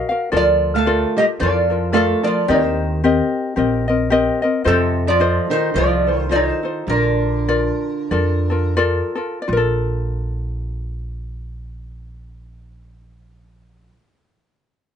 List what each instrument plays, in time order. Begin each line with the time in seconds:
0.09 ukulele F#4 A#4 F5
0.32 upright bass D2, steel-string acoustic guitar F3, ukulele F4 A4 A#4 D5
0.37 resonator guitar played with a steel bar F4 D5
0.75 steel-string acoustic guitar A3, resonator guitar played with a steel bar A4 F5
0.86 ukulele F4 A4 A#4 D5
1.17 steel-string acoustic guitar G3, resonator guitar played with a steel bar G4 D#5
1.40 upright bass F2, steel-string acoustic guitar F3, ukulele F4 A4 A#4 D5, resonator guitar played with a steel bar F4 D5
1.70 ukulele F4 A4 A#4
1.93 steel-string acoustic guitar A3, ukulele F4 A4 A#4 D5, resonator guitar played with a steel bar F5
1.97 resonator guitar played with a steel bar A4
2.23 steel-string acoustic guitar F3, ukulele F4 A4 A#4, resonator guitar played with a steel bar F4 D5
2.48 upright bass D#2, steel-string acoustic guitar D#3, ukulele C4 G4 A#4 D#5, resonator guitar played with a steel bar D#4 C5
3.04 ukulele C4 G4 A#4 D#5
3.56 upright bass A#1, ukulele C4 G4 A#4 D#5
3.88 ukulele C4 A#4 D#5
4.10 ukulele C4 G4 A#4 D#5
4.42 ukulele C4 A#4 D#5
4.64 upright bass F2, steel-string acoustic guitar C3, resonator guitar played with a steel bar C4 A4, ukulele F4 A4 C5 D#5
5.07 steel-string acoustic guitar F3, resonator guitar played with a steel bar F4 D5
5.20 ukulele F4 A4 C5 D#5
5.50 steel-string acoustic guitar D#3, resonator guitar played with a steel bar D#4 C5
5.74 upright bass C2, steel-string acoustic guitar F3, ukulele F4 A4 C5 D#5, resonator guitar played with a steel bar F4 D5
6.07 ukulele F4 A4 C5
6.16 steel-string acoustic guitar D#3
6.22 resonator guitar played with a steel bar C5
6.29 steel-string acoustic guitar D#3, ukulele F4 A4 C5 D#5, resonator guitar played with a steel bar C#5
6.36 resonator guitar played with a steel bar D#4
6.49 resonator guitar played with a steel bar C5
6.63 ukulele F4 A4 C5
6.87 upright bass A#1, steel-string acoustic guitar D3, ukulele F4 A#4 D5, resonator guitar played with a steel bar A#4
6.93 resonator guitar played with a steel bar D4
7.48 ukulele F4 A#4 D5
8.11 upright bass F2, ukulele F4 A4 A#4 D5
8.50 ukulele F4 A4 A#4
8.77 ukulele F4 A4 A#4 D5
9.15 ukulele F4 A4 A#4
9.42 ukulele D5
9.48 upright bass A#1, ukulele F4
9.53 ukulele A#4
9.57 ukulele A4